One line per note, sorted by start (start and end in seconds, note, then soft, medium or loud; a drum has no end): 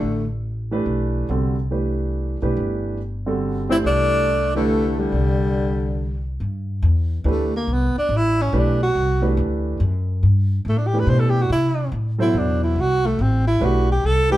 0.00 0.83 A1 medium
0.00 0.27 D3 medium
0.00 0.27 A3 medium
0.71 1.26 E3 medium
0.71 1.26 A3 medium
0.71 1.27 D4 medium
0.71 1.27 G4 medium
0.71 1.27 B4 medium
0.86 1.26 B1 medium
1.29 2.37 C2 medium
1.29 1.54 D3 medium
1.29 1.54 G3 soft
1.29 1.54 C4 soft
1.29 1.54 F#4 soft
1.29 1.55 A4 medium
1.71 2.36 E3 medium
1.71 2.36 A3 soft
1.71 2.36 D4 soft
1.71 2.36 G4 soft
1.71 2.36 B4 medium
2.42 2.56 B1 medium
2.42 2.97 E3 medium
2.42 2.97 A3 soft
2.42 2.97 D4 medium
2.42 2.97 G4 medium
2.42 2.97 B4 medium
2.57 3.80 G1 medium
3.26 3.66 D3 medium
3.26 3.66 G3 medium
3.26 3.66 C4 medium
3.26 3.67 F#4 medium
3.26 3.67 A4 medium
3.69 4.24 E3 medium
3.69 4.24 A3 medium
3.69 3.77 C4 medium
3.69 4.24 D4 medium
3.69 3.78 E4 medium
3.69 4.24 G4 medium
3.69 4.25 C5 medium
3.83 5.08 C2 medium
3.83 4.50 A3 medium
3.83 4.52 D4 loud
4.55 4.97 D3 medium
4.55 5.10 E3 medium
4.55 5.10 A3 medium
4.55 5.01 A3 medium
4.55 5.10 D4 medium
4.55 5.10 G4 medium
4.55 5.10 B4 medium
4.97 6.25 D3 medium
4.97 6.26 G3 medium
5.12 6.36 C2 medium
6.40 6.81 G2 medium
6.82 7.24 E2 medium
7.24 7.66 D2 medium
7.24 7.50 E3 medium
7.24 7.50 A3 medium
7.24 7.50 D4 medium
7.24 7.50 G4 medium
7.24 7.50 B4 medium
7.31 7.54 A3 medium
7.56 7.74 A#3 medium
7.67 7.93 C2 medium
7.73 7.98 B3 medium
7.95 8.18 D4 medium
7.95 muted upright bass stroke soft
8.09 8.51 A1 medium
8.17 8.43 E4 medium
8.42 8.60 C#4 medium
8.53 8.94 B1 medium
8.53 8.77 E3 medium
8.53 8.77 A3 medium
8.53 8.78 D4 medium
8.53 8.78 G4 medium
8.53 8.78 B4 medium
8.58 8.82 D4 medium
8.83 9.35 F#4 medium
8.95 9.36 C2 medium
9.21 9.77 E3 medium
9.21 9.76 A3 medium
9.21 9.77 D4 medium
9.21 9.77 G4 medium
9.21 9.77 B4 medium
9.37 9.79 D2 medium
9.80 10.21 F#2 medium
10.23 10.64 G2 medium
10.65 11.06 A2 medium
10.65 10.79 A3 medium
10.78 10.88 D4 medium
10.87 11.01 G4 medium
10.94 11.47 E3 medium
10.94 11.47 A3 medium
10.94 11.48 D4 soft
10.94 11.48 G4 medium
10.94 11.48 B4 medium
11.00 11.10 B4 medium
11.07 11.48 B2 medium
11.07 11.21 C5 medium
11.20 11.31 A4 medium
11.30 11.43 G4 medium
11.42 11.49 F#4 medium
11.50 11.91 C3 medium
11.50 11.91 E4 medium
11.92 12.33 A2 medium
12.18 12.74 B2 medium
12.18 12.73 F#3 medium
12.18 12.74 E4 medium
12.18 12.40 E4 medium
12.18 12.74 A4 medium
12.18 12.74 C5 medium
12.33 12.75 E2 medium
12.38 12.63 D4 medium
12.64 12.82 E4 medium
12.76 13.18 C2 medium
12.81 13.08 F#4 loud
13.06 13.23 A3 medium
13.19 13.60 A1 medium
13.19 13.47 C4 medium
13.47 13.66 E4 medium
13.60 14.03 B1 medium
13.60 13.86 E3 medium
13.60 13.86 A3 medium
13.60 13.86 D4 medium
13.60 13.86 G4 medium
13.60 13.86 B4 medium
13.65 13.91 F#4 medium
13.92 14.07 G4 medium
14.03 14.37 C2 medium
14.03 14.31 A4 loud
14.30 14.37 E3 medium
14.30 14.37 A3 medium
14.30 14.37 D4 medium
14.30 14.37 G4 medium
14.30 14.37 G4 loud
14.30 14.37 B4 medium